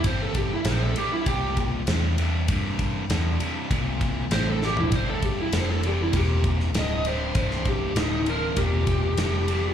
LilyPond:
<<
  \new Staff \with { instrumentName = "Lead electric guitar" } { \time 4/4 \key c \mixolydian \tempo 4 = 98 c''16 a'16 g'16 e'16 c''16 a'16 g'16 e'16 g'8 r4. | r2. c''16 a'16 g'16 e'16 | c''16 a'16 g'16 e'16 c''16 a'16 g'16 e'16 g'8 r8 ees''8 c''8 | c''8 g'8 ees'8 bes'8 g'2 | }
  \new Staff \with { instrumentName = "Distorted electric guitar" } { \clef bass \time 4/4 \key c \mixolydian <c, g,>4 <c, a,>8 <c, g,>8 <c, bes,>4 <c, a,>8 <c, g,>8 | <c, g,>4 <c, a,>8 <c, g,>8 <c, bes,>4 <c, a,>8 <c, g,>8 | <c, g,>4 <c, a,>8 <c, g,>8 <c, bes,>4 <c, a,>8 <c, g,>8 | <c, g,>4 <c, a,>8 <c, g,>8 <c, bes,>4 <c, a,>8 <c, g,>8 | }
  \new Staff \with { instrumentName = "Picked electric bass" } { \clef bass \time 4/4 \key c \mixolydian g,,4 bes,,8 r8 c,4 e,4 | g,4 e,8 r8 c,4 a,,4 | g,,8 r8 f,,4 e,,4 d,,4 | c,,4 d,,4 e,,4 f,,4 | }
  \new DrumStaff \with { instrumentName = "Drums" } \drummode { \time 4/4 <bd cymr>8 <bd cymr>8 <cymr sn>8 cymr8 <bd cymr>8 <bd cymr>8 <cymr sn>8 cymr8 | <bd cymr>8 <bd cymr>8 <cymr sn>8 cymr8 <bd cymr>8 <bd cymr>8 <cymr sn>8 sn16 tomfh16 | <bd cymr>8 <bd cymr>8 <cymr sn>8 cymr8 <bd cymr>8 <bd cymr>16 sn16 <cymr sn>8 cymr8 | <bd cymr>16 sn16 <bd cymr>8 <cymr sn>8 cymr8 <bd cymr>8 <bd cymr>8 <cymr sn>8 cymr8 | }
>>